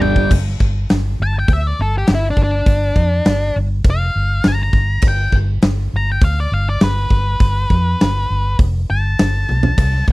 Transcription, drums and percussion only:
0.02 floor tom medium
0.16 kick medium
0.31 kick loud
0.31 crash loud
0.48 snare soft
0.60 kick medium
0.89 snare loud
0.89 open hi-hat medium
1.48 kick loud
1.48 open hi-hat medium
2.07 snare loud
2.07 open hi-hat medium
2.37 kick medium
2.66 kick loud
2.66 open hi-hat medium
2.96 kick medium
3.25 snare loud
3.25 open hi-hat medium
3.84 kick loud
3.84 open hi-hat medium
4.43 snare loud
4.43 open hi-hat medium
4.73 kick medium
5.02 kick loud
5.02 crash medium
5.32 kick medium
5.62 snare loud
5.62 open hi-hat medium
6.21 kick loud
6.21 open hi-hat medium
6.80 snare loud
6.80 open hi-hat medium
7.10 kick medium
7.40 kick loud
7.40 open hi-hat medium
7.70 kick medium
8.00 snare loud
8.00 open hi-hat medium
8.59 kick loud
8.59 open hi-hat medium
9.19 snare loud
9.19 open hi-hat medium
9.49 high tom medium
9.63 floor tom medium
9.78 kick loud
9.78 open hi-hat medium
9.78 crash medium
9.95 snare soft
10.08 kick medium

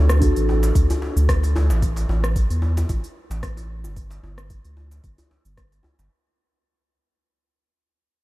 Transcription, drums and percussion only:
0.09 cross-stick medium
0.09 shaker medium
0.22 kick loud
0.22 open hi-hat medium
0.22 shaker medium
0.36 open hi-hat soft
0.36 shaker soft
0.49 djembe tone medium
0.63 open hi-hat soft
0.63 djembe slap medium
0.63 shaker medium
0.75 kick loud
0.75 open hi-hat medium
0.75 shaker medium
0.90 open hi-hat soft
0.90 djembe bass medium
0.90 shaker soft
1.02 djembe tone medium
1.17 open hi-hat soft
1.17 shaker medium
1.29 kick loud
1.29 cross-stick medium
1.29 open hi-hat medium
1.29 shaker medium
1.43 open hi-hat soft
1.43 djembe slap soft
1.43 shaker soft
1.56 djembe tone medium
1.56 djembe bass medium
1.70 djembe slap medium
1.70 shaker medium
1.82 kick loud
1.82 open hi-hat medium
1.82 shaker medium
1.96 open hi-hat soft
1.96 djembe slap medium
1.96 shaker soft
2.09 djembe tone medium
2.24 cross-stick medium
2.24 shaker medium
2.36 kick loud
2.36 open hi-hat medium
2.36 shaker medium
2.50 open hi-hat soft
2.50 shaker soft
2.62 djembe tone medium
2.77 open hi-hat soft
2.77 djembe slap soft
2.77 djembe tone medium
2.77 djembe bass medium
2.77 shaker medium
2.89 kick loud
2.89 open hi-hat medium
2.89 djembe bass medium
2.89 shaker medium
3.04 open hi-hat soft
3.04 shaker soft
3.31 open hi-hat soft
3.31 djembe slap medium
3.31 shaker medium
3.43 kick loud
3.43 cross-stick medium
3.43 open hi-hat medium
3.43 shaker soft
3.57 open hi-hat soft
3.57 djembe tone medium
3.57 shaker soft
3.84 djembe tone medium
3.84 shaker medium
3.96 kick loud
3.96 open hi-hat medium
3.96 shaker medium
4.10 open hi-hat soft
4.10 djembe slap medium
4.10 shaker soft
4.23 djembe tone medium
4.38 cross-stick medium
4.38 shaker medium
4.50 kick loud
4.50 open hi-hat medium
4.50 shaker soft
4.64 open hi-hat soft
4.64 shaker soft
4.77 djembe tone medium
4.91 open hi-hat soft
4.91 djembe slap soft
4.91 shaker medium
5.04 kick loud
5.04 open hi-hat medium
5.04 shaker soft
5.18 open hi-hat soft
5.18 djembe bass medium
5.18 shaker soft
5.31 djembe tone medium
5.45 open hi-hat soft
5.45 shaker medium
5.57 kick medium
5.57 cross-stick medium
5.57 open hi-hat medium
5.57 shaker soft
5.72 open hi-hat soft
5.72 djembe slap soft
5.72 shaker soft
5.83 djembe tone medium
5.83 djembe bass medium
5.99 open hi-hat soft
5.99 djembe slap medium
5.99 shaker medium

